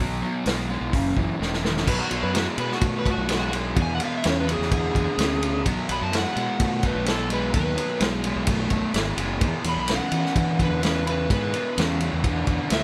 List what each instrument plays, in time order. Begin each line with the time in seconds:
0.00 fingered electric bass B1, overdriven electric guitar B2 F#3
0.22 overdriven electric guitar B2 F#3
0.45 fingered electric bass B1, overdriven electric guitar B2 G#3, snare, open hi-hat
0.70 overdriven electric guitar B2 G#3
0.81 fingered electric bass B1
0.93 fingered electric bass F#1, overdriven electric guitar F#2 C#3, kick, open hi-hat
1.17 fingered electric bass F#1, overdriven electric guitar F#2 E3, kick
1.39 fingered electric bass E1, overdriven electric guitar F#2 D#3, snare
1.53 snare
1.63 overdriven electric guitar F#2 D#3, snare
1.77 snare
1.85 fingered electric bass B1, overdriven electric guitar B2 F#3, electric slide guitar B4, kick, crash
1.99 electric slide guitar F#4
2.10 fingered electric bass B1, overdriven electric guitar B2 F#3, ride
2.23 fingered electric bass F#2, electric slide guitar B4
2.33 overdriven electric guitar B2 G#3, electric slide guitar F#4, snare, ride
2.58 overdriven electric guitar B2 G#3, fingered electric bass B2, electric slide guitar B4, ride
2.72 electric slide guitar F#4, snare
2.81 overdriven electric guitar B2 A3, fingered electric bass B2, kick, ride
2.99 electric slide guitar B4
3.04 overdriven electric guitar B2 A3, kick, ride
3.10 electric slide guitar F#4
3.18 fingered electric bass B1
3.29 overdriven electric guitar B2 G#3, snare, ride
3.35 electric slide guitar F#4
3.51 overdriven electric guitar B2 G#3, ride
3.76 overdriven electric guitar E2 B2, fingered electric bass E2, kick, ride
3.82 electric slide guitar G#5
3.94 electric slide guitar F#5
4.00 overdriven electric guitar E2 B2, ride
4.05 electric slide guitar F5
4.17 electric slide guitar E5
4.24 overdriven electric guitar E2 C#3, fingered electric bass E2, snare, ride
4.30 electric slide guitar C#5
4.40 electric slide guitar B4
4.47 overdriven electric guitar E2 C#3, electric slide guitar G#4, ride
4.59 fingered electric bass E2, snare
4.71 overdriven electric guitar E2 D3, electric slide guitar G#4, kick, ride
4.94 overdriven electric guitar E2 D3, fingered electric bass E2, kick, ride
5.18 fingered electric bass D2, overdriven electric guitar E2 C#3, snare, ride
5.41 overdriven electric guitar E2 C#3, ride
5.66 fingered electric bass B1, overdriven electric guitar B2 F#3, kick, ride
5.89 fingered electric bass B1, overdriven electric guitar B2 F#3, electric slide guitar B5, ride
6.01 fingered electric bass F#2, electric slide guitar A5
6.13 overdriven electric guitar B2 G#3, snare, ride
6.17 electric slide guitar F#5
6.36 overdriven electric guitar B2 G#3, fingered electric bass B2, ride
6.59 overdriven electric guitar B2 A3, fingered electric bass B2, kick, ride
6.83 overdriven electric guitar B2 A3, electric slide guitar B4, kick, ride
6.95 fingered electric bass B1
7.05 overdriven electric guitar B2 G#3, electric slide guitar A4, snare, ride
7.30 overdriven electric guitar B2 G#3, electric slide guitar B4, ride
7.53 fingered electric bass D#2, overdriven electric guitar B2 F#3, electric slide guitar B4, kick, ride
7.76 overdriven electric guitar B2 F#3, ride
8.00 fingered electric bass B1, overdriven electric guitar B2 G#3, snare, ride
8.24 overdriven electric guitar B2 G#3, ride
8.36 fingered electric bass B1
8.47 overdriven electric guitar B2 A3, kick, ride
8.70 fingered electric bass B1, overdriven electric guitar B2 A3, kick, ride
8.94 fingered electric bass G#1, overdriven electric guitar B2 G#3, snare, ride
9.17 fingered electric bass F#1, overdriven electric guitar B2 G#3, ride
9.41 overdriven electric guitar E2 B2, fingered electric bass E2, kick, ride
9.64 fingered electric bass E2, overdriven electric guitar E2 B2, ride
9.69 electric slide guitar B5
9.77 fingered electric bass B1, electric slide guitar B5
9.88 overdriven electric guitar E2 C#3, snare, ride
9.92 electric slide guitar F#5
10.12 overdriven electric guitar E2 C#3, fingered electric bass E3, ride
10.26 snare
10.35 overdriven electric guitar E2 D3, fingered electric bass E3, kick, ride
10.59 overdriven electric guitar E2 D3, electric slide guitar B4, kick, ride
10.70 fingered electric bass E2
10.83 overdriven electric guitar E2 C#3, electric slide guitar B4, snare, ride
11.06 overdriven electric guitar E2 C#3, electric slide guitar B4, ride
11.30 overdriven electric guitar E2 B2, fingered electric bass G#2, electric slide guitar B4, kick, ride
11.52 overdriven electric guitar E2 B2, ride
11.77 overdriven electric guitar E2 C#3, fingered electric bass E2, snare, ride
12.00 overdriven electric guitar E2 C#3, ride
12.13 fingered electric bass E2
12.24 overdriven electric guitar E2 D3, kick, ride
12.47 fingered electric bass E2, overdriven electric guitar E2 D3, kick, ride
12.70 fingered electric bass D2, overdriven electric guitar E2 C#3, electric slide guitar E5, snare, ride